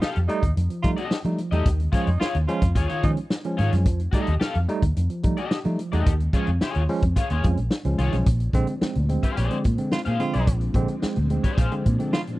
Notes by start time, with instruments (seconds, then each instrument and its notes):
0.01 tenor saxophone D#4, clean electric guitar G4 A4 F5, muted fingered electric bass stroke, snare
0.16 fingered electric bass F2, closed hi-hat
0.28 tine electric piano G3 A3 D#4, tenor saxophone D#4, closed hi-hat
0.43 fingered electric bass D#2, kick, closed hi-hat
0.56 fingered electric bass F2, tine electric piano A3 D#4, closed hi-hat
0.70 tine electric piano F3, closed hi-hat
0.82 fingered electric bass F3, tine electric piano G3 A3 D#4, tenor saxophone F4, kick, closed hi-hat
0.97 clean electric guitar G4 A4 D#5, closed hi-hat
1.11 snare
1.24 fingered electric bass F3, tine electric piano G3 A3 D#4, closed hi-hat
1.38 tine electric piano F3, closed hi-hat
1.51 fingered electric bass E2, tine electric piano G3 A3 D#4, clean electric guitar G4 A4 D#5, closed hi-hat
1.65 fingered electric bass D#2, tine electric piano D#3, kick, closed hi-hat
1.80 tine electric piano G#3 C#4, closed hi-hat
1.92 tine electric piano F3 G#3 C#4, clean electric guitar F4 G#4 C#5, kick, closed hi-hat
2.07 fingered electric bass F2, tenor saxophone D#4, closed hi-hat
2.20 clean electric guitar F4 G#4 C#5, tenor saxophone F4, muted fingered electric bass stroke, snare
2.35 fingered electric bass D#2, closed hi-hat
2.47 tine electric piano F3 G#3 C#4, tenor saxophone F4, closed hi-hat
2.62 fingered electric bass F2, kick, closed hi-hat
2.75 fingered electric bass D#2, tine electric piano G#3 C#4, clean electric guitar F4 G#4 C#5, kick, closed hi-hat
2.88 tine electric piano D#3, clean electric guitar F4 G#4 C#5, closed hi-hat
3.03 fingered electric bass D#3, tine electric piano F3 G#3 C#4, tenor saxophone D#4, kick, closed hi-hat
3.17 closed hi-hat
3.30 snare
3.44 tine electric piano F3 G#3 C#4, closed hi-hat
3.57 fingered electric bass G#2, tine electric piano D#3, clean electric guitar F4 G#4 C#5, closed hi-hat
3.73 fingered electric bass F#2, tine electric piano F3 G#3 C#4, snare, closed hi-hat
3.86 fingered electric bass F2, tine electric piano F3, kick, closed hi-hat
4.00 tine electric piano A3 D#4, closed hi-hat
4.11 tine electric piano G3 A3 D#4, clean electric guitar G4 A4 D#5, kick, closed hi-hat
4.27 fingered electric bass D#2, closed hi-hat
4.40 clean electric guitar G4 A4 F5, snare
4.55 fingered electric bass F2, closed hi-hat
4.69 tine electric piano G3 A3 D#4, closed hi-hat
4.82 fingered electric bass D#2, kick, closed hi-hat
4.96 fingered electric bass F2, tine electric piano A3 D#4, closed hi-hat
5.10 tine electric piano F3, closed hi-hat
5.23 fingered electric bass F3, tine electric piano G3 A3 D#4, kick, closed hi-hat
5.37 clean electric guitar G4 A4 D#5, closed hi-hat
5.51 snare
5.65 fingered electric bass F3, tine electric piano G3 A3 D#4, closed hi-hat
5.79 tine electric piano F3, closed hi-hat
5.92 fingered electric bass E2, tine electric piano G3 A3 D#4, clean electric guitar G4 A4 D#5, closed hi-hat
6.06 fingered electric bass D#2, tine electric piano D#3, kick, closed hi-hat
6.20 tine electric piano G#3 C#4, closed hi-hat
6.33 tine electric piano F3 G#3 C#4, clean electric guitar F4 G#4 C#5, kick, closed hi-hat
6.47 fingered electric bass F2, closed hi-hat
6.61 clean electric guitar F4 G#4 C#5, muted fingered electric bass stroke, snare
6.75 fingered electric bass D#2, closed hi-hat
6.89 tine electric piano F3 G#3 C#4, open hi-hat
7.02 fingered electric bass F2, kick, closed hi-hat
7.16 tine electric piano G#3 C#4, clean electric guitar F4 G#4 C#5, kick, closed hi-hat
7.30 fingered electric bass D#2, tine electric piano D#3, clean electric guitar F4 G#4 C#5, closed hi-hat
7.44 fingered electric bass F2, tine electric piano F3 G#3 C#4, kick, closed hi-hat
7.57 fingered electric bass A#1, closed hi-hat
7.71 snare
7.85 fingered electric bass C#2, tine electric piano F3 G#3 C#4, closed hi-hat
7.98 fingered electric bass C2, tine electric piano D#3, clean electric guitar F4 G#4 C#5, closed hi-hat
8.12 fingered electric bass B1, tine electric piano F3 G#3 C#4, snare, closed hi-hat
8.26 fingered electric bass A#1, tine electric piano A#2, string machine F3 G#3 C4 D4, kick, closed hi-hat
8.40 closed hi-hat
8.53 fingered electric bass A#1, tine electric piano D3 G#3 C4, kick, closed hi-hat
8.67 tine electric piano G#3 C4, closed hi-hat
8.81 tine electric piano G#3 C4, muted fingered electric bass stroke, snare
8.95 fingered electric bass D2, tine electric piano A#2, closed hi-hat
9.09 tine electric piano G#3 C4, closed hi-hat
9.23 clean electric guitar G#4 C5 F5, kick, closed hi-hat
9.36 fingered electric bass A#1, clean electric guitar G#4 C5 D5, closed hi-hat
9.51 tine electric piano D3 G#3 C4, closed hi-hat
9.64 tine electric piano A#2, fingered electric bass A#2, kick, closed hi-hat
9.78 tine electric piano D3 G#3 C4, closed hi-hat
9.91 tenor saxophone F4, snare
10.05 tine electric piano A#2, fingered electric bass A#2, clean electric guitar G#4 C5 F5, closed hi-hat
10.20 tine electric piano D3 G#3 C4, tenor saxophone F4, closed hi-hat
10.33 fingered electric bass B1, clean electric guitar G#4 C5 D5, snare, closed hi-hat
10.47 fingered electric bass A#1, tine electric piano A#2, kick, closed hi-hat
10.61 closed hi-hat
10.74 fingered electric bass A#1, tine electric piano D3 G#3 C4, kick, closed hi-hat
10.88 tine electric piano G#3 C4, closed hi-hat
11.02 tine electric piano G#3 C4, muted fingered electric bass stroke, snare
11.16 fingered electric bass D2, tine electric piano A#2, closed hi-hat
11.30 tine electric piano G#3 C4, closed hi-hat
11.44 clean electric guitar G#4 C5 D5, kick, closed hi-hat
11.57 fingered electric bass A#1, clean electric guitar G#4 C5 F5, kick, closed hi-hat
11.72 tine electric piano D3 G#3 C4, closed hi-hat
11.86 tine electric piano A#2, fingered electric bass A#2, kick, closed hi-hat
11.99 tine electric piano D3 G#3 C4, closed hi-hat
12.13 tine electric piano G#3 C4, tenor saxophone F4, snare
12.27 tine electric piano A#2, closed hi-hat